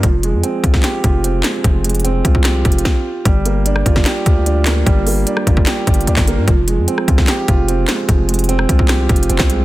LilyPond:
<<
  \new Staff \with { instrumentName = "Grand piano" } { \time 4/4 \key g \phrygian \tempo 4 = 149 f8 aes8 c'8 f'8 g'8 f'8 c'8 aes8 | f8 aes8 c'8 f'8 g'8 f'4. | g8 bes8 d'8 f'8 g'8 f'8 d'8 bes8 | g8 bes8 d'8 f'8 g'8 f'8 d'8 bes8 |
f8 aes8 c'8 f'8 g'8 f'8 c'8 aes8 | f8 aes8 c'8 f'8 g'8 f'8 c'8 aes8 | }
  \new Staff \with { instrumentName = "808-style bass" } { \clef bass \time 4/4 \key g \phrygian f,,8. f,16 r8 c,8 r8 f,,4 r8 | f,,4. c,4 f,,8 r4 | g,,4. g,,8 r8 d,4. | g,,4 r8 g,,8 r8 g,,8 d,16 g,,8 g,16 |
f,,8. f,16 r8 c,8 r8 f,,4 r8 | f,,4. c,4 f,,8 f,,16 c,8. | }
  \new DrumStaff \with { instrumentName = "Drums" } \drummode { \time 4/4 <hh bd>8 hh8 hh8 <hh bd>16 <bd sn>16 <hc hh sn>8 <hh bd>8 hh8 <hc hh sn>8 | <hh bd>8 <hh hho>32 hh32 hh32 hh32 hh8 <hh bd>16 bd16 \tuplet 3/2 { <hc hh sn>16 r16 r16 <hh bd>16 hh16 hh16 } <bd sn>4 | <hh bd>8 hh8 hh16 ss16 <hh bd>16 <bd sn>16 <hc hh sn>8 <hh bd>8 hh8 <hc hh sn>8 | <hh bd>8 hho8 hh16 ss16 <hh bd>16 bd16 \tuplet 3/2 { <hc hh sn>16 r16 r16 <hh bd>16 hh16 hh16 } hh16 <hc bd sn>16 hh8 |
<hh bd>8 hh8 hh16 ss16 <hh bd>16 <bd sn>16 <hc hh sn>8 <hh bd>8 hh8 <hc hh sn>8 | <hh bd>8 <hh hho>32 hh32 hh32 hh32 hh16 ss16 <hh bd>16 bd16 \tuplet 3/2 { <hc hh ss sn>16 r16 r16 <hh bd>16 hh16 hh16 } hh16 <hc bd sn>16 hh8 | }
>>